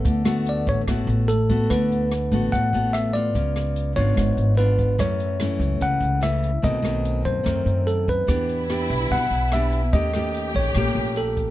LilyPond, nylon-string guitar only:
\new Staff \with { instrumentName = "Nylon-string guitar" } { \time 4/4 \key d \major \tempo 4 = 146 << { <a b fis'>8 <a b fis'>4. <a b fis'>4 r8 <a b fis'>8~ | <a b fis'>4 r8 <a b fis'>4 <a b fis'>4 <b f'>8~ | <b f'>4. <b d' eis'>4. <b d' eis'>4 | <e a cis'>4 <e a cis'>2 <e a cis'>8 r8 |
<dis a c'>8 <dis a c'>4. <dis a c'>2 | <b d' g'>4 <b d' g'>4. r8 <b d' g'>8 r8 | <a des' g'>8 <a des' g'>4. <a des' g'>2 | } \\ { d2 a,2 | d2 a,2 | cis2 gis,2 | fis,2 cis2 |
b,2 fis,2 | e2 b,2 | ees2 bes,2 | } >> }